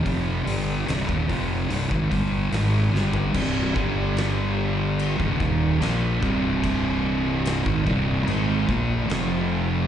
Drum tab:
CC |----------------|x---x---x---x---|x---x---x---x---|
HH |o-o-o-o-o-o-o---|----------------|----------------|
SD |----o-------o-o-|----o-------o---|----o-------o---|
FT |---------------o|----------------|----------------|
BD |o----oo--oo-----|o-o------oo---o-|o----oo---o-----|